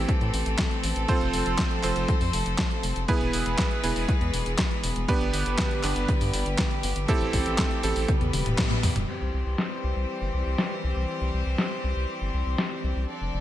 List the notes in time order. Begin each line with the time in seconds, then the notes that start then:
Already playing: E3 A3 C4 G4 A4
0.09 kick, closed hi-hat
0.21 A2, closed hi-hat
0.34 A1, open hi-hat
0.46 A1, closed hi-hat
0.59 kick, snare, clap, closed hi-hat
0.71 closed hi-hat
0.83 A1, open hi-hat
0.96 A1, closed hi-hat
1.08 F3 C4 F4 A4 C5, kick, closed hi-hat
1.21 F1, closed hi-hat
1.33 F1, open hi-hat
1.46 F1, closed hi-hat
1.58 kick, snare, clap, closed hi-hat
1.71 closed hi-hat
1.83 F1 C4 F4 A4 C5, clap, open hi-hat
1.96 F1, closed hi-hat
2.08 kick, closed hi-hat
2.21 F2, open hi-hat
2.33 F1, open hi-hat
2.46 F1, closed hi-hat
2.58 kick, snare, clap, closed hi-hat
2.71 closed hi-hat
2.83 F1, open hi-hat
2.96 F1, closed hi-hat
3.08 E3 G#3 B3 E4 G#4 B4, kick, closed hi-hat
3.21 E1, closed hi-hat
3.33 E1, open hi-hat
3.46 E1, closed hi-hat
3.58 kick, snare, clap, closed hi-hat
3.71 closed hi-hat
3.84 E1 B3 E4 G#4 B4, open hi-hat
3.96 E1, open hi-hat
4.08 kick, closed hi-hat
4.21 E2, closed hi-hat
4.34 E1, open hi-hat
4.46 E1, closed hi-hat
4.58 kick, snare, clap, closed hi-hat
4.71 closed hi-hat
4.84 E1, open hi-hat
4.96 E1, closed hi-hat
5.08 D3 G3 B3 D4 G4 B4, kick, closed hi-hat
5.21 G1, closed hi-hat
5.34 G1, open hi-hat
5.46 G1, closed hi-hat
5.58 kick, snare, clap, closed hi-hat
5.71 closed hi-hat
5.84 G1 B3 D4 G4 B4, clap, open hi-hat
5.96 G1, closed hi-hat
6.08 kick, closed hi-hat
6.21 G2, open hi-hat
6.33 G1, open hi-hat
6.46 G1, closed hi-hat
6.58 kick, snare, clap, closed hi-hat
6.71 closed hi-hat
6.83 G1, open hi-hat
6.96 G1, closed hi-hat
7.08 E3 A3 C4 E4 G4 A4, kick, closed hi-hat
7.21 A1, closed hi-hat
7.33 A1, kick, open hi-hat
7.46 A1, closed hi-hat
7.58 kick, snare, clap, closed hi-hat
7.71 closed hi-hat
7.83 A1 C4 E4 G4 A4, open hi-hat
7.96 A1, open hi-hat
8.08 E3 G3 B3 B4, kick, closed hi-hat, high tom
8.21 E2, closed hi-hat, high tom
8.33 E1, open hi-hat, high tom
8.46 E1, closed hi-hat, mid tom
8.58 kick, snare, clap, closed hi-hat, mid tom
8.71 closed hi-hat, mid tom
8.83 E2, mid tom, open hi-hat
8.96 E1, closed hi-hat, mid tom
9.08 E3 G3 C4 G4 C5, crash
9.21 C2
9.34 C2
9.46 C2
9.58 snare
9.84 C2
9.96 C2
10.21 G1
10.34 C2
10.46 C2
10.58 snare
10.84 C2
10.96 C2
11.21 C2
11.34 C2
11.46 C2
11.58 snare
11.84 C2
11.96 C2
12.21 G1
12.34 C2
12.46 C2
12.58 snare
12.84 C2
12.96 C2
13.08 F3 D4 A4 D5
13.21 F1
13.34 F1